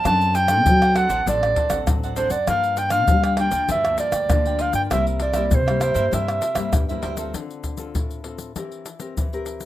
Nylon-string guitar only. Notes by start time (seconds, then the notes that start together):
0.06 F#3 C4 D4 A4
0.49 C4 D4 A4
0.67 F#3
0.96 C4 D4 A4
1.26 F#3 C4 D4 A4
1.70 C4 D4 A4
1.87 F#3
2.17 C4 D4 A4
2.48 G2 F3 A#3 D4
2.91 F3 A#3 D4
3.09 D3
3.39 F3 A#3 D4
3.70 G2
3.86 F3 A#3 D4
4.30 D3 F3 A#3 D4
4.91 C3 G3 A#3 E4
5.36 G3 A#3 E4
5.53 G2
5.68 G3 A#3 E4
5.96 G3 A#3 E4
6.14 C3 G3 A#3 E4
6.56 G3 A#3 E4
6.74 G2
6.90 G3 A#3 E4
7.17 C4 F4 A4
7.34 D3
7.78 C4 F4 A4
7.95 A2
8.24 C4 F4 A4
8.57 E3 C4 G4 A#4
9.00 C4 G4 A#4
9.18 E3
9.33 C4 G4 A#4